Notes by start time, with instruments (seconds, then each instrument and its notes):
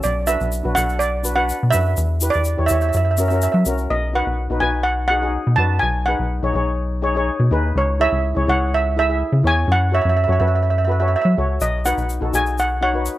0.03 analog synth bass B1, steel pan D5, shaker
0.27 steel pan D4 F#4 B4 E5, shaker
0.41 analog synth bass B1, shaker
0.52 shaker
0.63 analog synth bass B1, steel pan D4 F#4 B4
0.75 analog synth bass B1, steel pan D4 F#4 A4 F#5, shaker
0.89 shaker
0.99 steel pan D5, shaker
1.23 steel pan D4 F#4 B4, shaker
1.35 steel pan D4 F#4 B4 F#5
1.49 shaker
1.63 analog synth bass B2
1.70 analog synth bass F#2, steel pan D4 F#4 B4 E5, shaker
1.97 analog synth bass E2, shaker
2.21 steel pan E4 G4 B4, shaker
2.30 steel pan D5, shaker
2.35 analog synth bass E2
2.44 shaker
2.57 analog synth bass E2, steel pan E4 G4 C#5
2.66 steel pan E4 G4 E5, shaker
2.71 analog synth bass E2, steel pan C#5 E5
2.81 steel pan E5, shaker
2.89 steel pan E5
2.93 analog synth bass F#2, steel pan E5, shaker
3.05 steel pan E5
3.11 steel pan E5
3.17 steel pan C#4 F#4 A#4 E5, shaker
3.28 steel pan C#4 F#4 E5, shaker
3.32 steel pan A#4 E5
3.42 steel pan E5, shaker
3.52 analog synth bass F#3, steel pan E5
3.66 analog synth bass C2, steel pan C#4 F#4 A#4, shaker
3.78 shaker
3.90 analog synth bass B1, steel pan D#5
4.13 steel pan D#4 F#4 B4 F#5
4.27 analog synth bass B1
4.50 analog synth bass B1, steel pan D#4 F#4 B4
4.60 analog synth bass B1, steel pan D#4 F#4 B4 G#5
4.83 steel pan F#5
5.08 steel pan D#4 F#4 G#4 F#5
5.22 steel pan D#4 F#4 G#4
5.47 analog synth bass B2
5.56 analog synth bass F#2, steel pan D#4 F#4 B4 A5
5.79 analog synth bass B1, steel pan G#5
6.06 steel pan D#4 G#4 B4 F#5
6.19 analog synth bass B1
6.42 analog synth bass B1, steel pan D#4 G#4 C#5
6.54 analog synth bass B1, steel pan D#4 G#4 C#5
7.02 steel pan D#4 G#4 C#5
7.15 steel pan D#4 G#4 C#5
7.40 analog synth bass B2
7.51 analog synth bass D#2, steel pan D#4 G#4 B4
7.75 analog synth bass C#2, steel pan C#5
8.00 steel pan E4 G#4 C#5 E5
8.12 analog synth bass C#2
8.35 analog synth bass C#2, steel pan E4 G#4 C#5
8.47 analog synth bass C#2, steel pan E4 G#4 C#5 F#5
8.74 steel pan E5
8.96 steel pan E4 G#4 E5
9.09 steel pan E4 G#4 E5
9.32 analog synth bass C#3
9.43 analog synth bass E2, steel pan E4 G#4 C#5
9.47 steel pan G#5
9.68 analog synth bass F#2
9.72 steel pan F#5
9.92 steel pan F#4 A4 C#5 E5
10.02 analog synth bass F#2, steel pan E5
10.09 steel pan E5
10.17 steel pan E5
10.24 steel pan F#4 E5
10.28 analog synth bass F#2, steel pan A4 C#5
10.32 steel pan E5
10.39 analog synth bass F#2, steel pan F#4 A4 B4 E5
10.48 steel pan E5
10.55 steel pan E5
10.63 steel pan E5
10.70 steel pan E5
10.78 steel pan E5
10.85 steel pan F#4 A4 E5
10.89 steel pan B4 E5
11.00 steel pan F#4 A4 C#5 E5
11.08 steel pan E5
11.16 steel pan E5
11.22 analog synth bass F#3, steel pan E5
11.37 analog synth bass C#2, steel pan F#4 A4 C#5
11.61 analog synth bass B1, steel pan D#5, shaker
11.85 steel pan D#4 F#4 B4 F#5, shaker
11.97 analog synth bass B1, shaker
12.09 shaker
12.20 analog synth bass B1, steel pan D#4 F#4 A4
12.32 analog synth bass B1, steel pan D#4 F#4 G#4 G#5, shaker
12.46 shaker
12.58 steel pan F#5, shaker
12.81 steel pan D#4 F#4 C#5 F#5
12.94 steel pan D#4 F#4 B4
13.06 shaker